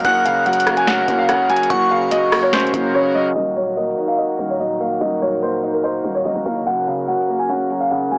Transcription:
Already playing: harmonium A#4
0.05 808-style bass F#1, felt piano F#2, harmonium C#3 A#3 F#4, grand piano F#5, synth bell F#6, kick, closed hi-hat
0.25 felt piano C#3, grand piano F5, closed hi-hat
0.46 felt piano F#3, grand piano F#5, closed hi-hat
0.53 closed hi-hat
0.60 closed hi-hat
0.67 felt piano A#3, cross-stick, closed hi-hat
0.77 grand piano G#5, closed hi-hat
0.87 felt piano C#4, grand piano F#5, snare, closed hi-hat
1.08 808-style bass F#1, felt piano F#2, kick, closed hi-hat
1.19 grand piano F5
1.29 felt piano C#3, grand piano F#5, cross-stick, closed hi-hat
1.49 felt piano F#3, grand piano G#5, closed hi-hat
1.56 closed hi-hat
1.63 closed hi-hat
1.70 808-style bass F#1, felt piano F#2, grand piano F#5, synth bell C#6, kick, closed hi-hat
1.91 felt piano C#3, grand piano F5
2.11 felt piano F#3, grand piano D#5, closed hi-hat
2.32 felt piano A#3, cross-stick, open hi-hat
2.42 grand piano C#5
2.53 felt piano C#4, grand piano C5, snare, closed hi-hat
2.60 closed hi-hat
2.67 closed hi-hat
2.74 808-style bass F#1, felt piano F#2, kick, closed hi-hat
2.94 felt piano C#3, grand piano C#5
3.15 felt piano F#3, grand piano D#5
3.35 808-style bass D#1, harmonium D#3 A#3 F#4 A#4, grand piano D#5
3.56 felt piano F#3, grand piano C#5, closed hi-hat
3.77 felt piano A#3, grand piano D#5, closed hi-hat
3.84 closed hi-hat
3.91 closed hi-hat
3.98 felt piano D#4, closed hi-hat
4.08 grand piano F5, closed hi-hat
4.18 grand piano D#5, felt piano D#5, closed hi-hat
4.39 808-style bass D#1, felt piano D#3, closed hi-hat
4.50 grand piano C#5
4.60 felt piano F#3, grand piano D#5, closed hi-hat
4.80 felt piano A#3, grand piano F5, closed hi-hat
4.87 closed hi-hat
4.94 closed hi-hat
5.01 808-style bass D#1, felt piano D#3, grand piano D#5, closed hi-hat
5.22 felt piano F#3, grand piano C#5
5.42 felt piano A#3, grand piano C5, closed hi-hat
5.63 felt piano D#4, closed hi-hat
5.73 grand piano A#4, closed hi-hat
5.84 grand piano C5, felt piano D#5, closed hi-hat
5.91 closed hi-hat
5.98 closed hi-hat
6.05 808-style bass D#1, felt piano D#3, closed hi-hat
6.12 grand piano C#5, closed hi-hat
6.18 closed hi-hat
6.25 808-style bass D#1, felt piano F#3, grand piano D#5, closed hi-hat
6.36 808-style bass D#1
6.46 808-style bass F#1, felt piano A#3, grand piano F5, closed hi-hat
6.51 closed hi-hat
6.56 closed hi-hat
6.61 closed hi-hat
6.67 felt piano F#2, harmonium C#3, grand piano F#5, closed hi-hat
6.87 felt piano C#3, grand piano F5, closed hi-hat
7.08 felt piano F#3, grand piano F#5, closed hi-hat
7.15 closed hi-hat
7.22 closed hi-hat
7.29 felt piano A#3, closed hi-hat
7.39 grand piano G#5, closed hi-hat
7.49 felt piano C#4, grand piano F#5, closed hi-hat
7.70 felt piano F#2, closed hi-hat
7.81 grand piano F5
7.91 felt piano C#3, grand piano F#5, closed hi-hat
8.12 felt piano F#3, grand piano G#5, closed hi-hat

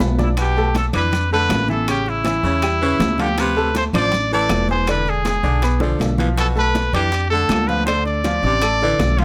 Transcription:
0.00 upright bass B1, grand piano B3 B4 B5, low bongo, high conga, low timbale, maracas
0.18 grand piano D4 D5 D6, trumpet E4, low bongo, high conga, low timbale, maracas
0.37 baritone saxophone B2, trumpet G4, high bongo, high conga, high timbale, claves, maracas
0.56 grand piano A3 A4 A5, high conga, maracas
0.75 trumpet A4, high bongo, high conga, high timbale, low timbale, maracas
0.93 upright bass F2, baritone saxophone E3, grand piano D4 D5 D6, trumpet B4, low conga, high timbale, claves, maracas
1.12 high bongo, high conga, low conga, high timbale, maracas
1.31 baritone saxophone D3, grand piano A3 A4 A5, trumpet B4, high conga, maracas
1.49 upright bass A1, high bongo, low bongo, high conga, high timbale, low timbale, claves, maracas
1.68 grand piano E3 E4 E5, trumpet A4, high conga, maracas
1.87 grand piano C#3 C#4 C#5, trumpet G4, high bongo, high conga, high timbale, claves, maracas
2.06 trumpet E4, high bongo, high conga, maracas
2.24 grand piano E3 E4 E5, high bongo, high conga, high timbale, low timbale, maracas
2.43 upright bass E2, baritone saxophone C#3, grand piano C#4 C#5 C#6, high bongo, maracas
2.62 grand piano G3 G4 G5, high bongo, high conga, high timbale, claves, maracas
2.81 grand piano C#3 C#4 C#5, baritone saxophone E3, high conga, maracas
3.00 upright bass D2, high bongo, low bongo, high conga, high timbale, low timbale, maracas
3.18 baritone saxophone D3, grand piano F3 F4 F5, trumpet G4, high bongo, high conga, high timbale, maracas
3.38 baritone saxophone C3, trumpet B4, high bongo, high conga, high timbale, claves, maracas
3.56 grand piano A3 A4 A5, high conga, maracas
3.75 trumpet C5, high bongo, high conga, high timbale, low timbale, maracas
3.93 upright bass A1, baritone saxophone F3, grand piano D4 D5 D6, trumpet D5, low conga, high timbale, claves, maracas
4.12 high bongo, high conga, low conga, high timbale, maracas
4.31 baritone saxophone E3, grand piano A3 A4 A5, trumpet D5, high conga, maracas
4.49 upright bass E1, high bongo, low bongo, high conga, high timbale, low timbale, claves, maracas
4.69 grand piano G#3 G#4 G#5, trumpet C5, high conga, maracas
4.87 grand piano D3 D4 D5, trumpet B4, high bongo, high conga, high timbale, claves, maracas
5.06 trumpet G#4, high bongo, high conga, maracas
5.25 grand piano G#3 G#4 G#5, high bongo, high conga, high timbale, low timbale, maracas
5.43 upright bass B1, baritone saxophone D3, grand piano D4 D5 D6, high bongo, maracas
5.62 grand piano B3 B4 B5, high bongo, high conga, high timbale, claves, maracas
5.80 grand piano D3 D4 D5, baritone saxophone F3, high bongo, high conga, maracas
5.99 upright bass B1, high conga, high timbale, low timbale, maracas
6.18 baritone saxophone E3, grand piano F3 F4 F5, low bongo, high conga, high timbale, maracas
6.37 baritone saxophone B2, trumpet A4, high bongo, high timbale, claves, maracas
6.55 grand piano A3 A4 A5, trumpet B4, high conga, maracas
6.75 high bongo, high conga, high timbale, low timbale, maracas
6.93 upright bass F2, baritone saxophone E3, grand piano D4 D5 D6, trumpet G4, low conga, high timbale, claves, maracas
7.12 high bongo, high conga, high timbale, maracas
7.30 baritone saxophone D3, grand piano A3 A4 A5, trumpet A4, high conga, maracas
7.49 upright bass D2, high bongo, low bongo, high conga, high timbale, low timbale, claves, maracas
7.68 grand piano F3 F4 F5, trumpet B4, high conga, maracas
7.86 grand piano D3 D4 D5, trumpet C5, high bongo, high conga, high timbale, claves, maracas
8.06 trumpet D5, high bongo, high conga, maracas
8.24 grand piano F3 F4 F5, high bongo, high conga, high timbale, low timbale, maracas
8.43 upright bass A1, baritone saxophone C3, grand piano D4 D5 D6, high bongo, maracas
8.62 grand piano A3 A4 A5, high bongo, high conga, high timbale, claves, maracas
8.81 grand piano D3 D4 D5, baritone saxophone E3, high conga, maracas
8.99 upright bass B1, high bongo, low bongo, high conga, high timbale, low timbale, maracas
9.18 baritone saxophone D3, grand piano F3 F4 F5, trumpet F4, high bongo, high conga, high timbale, maracas

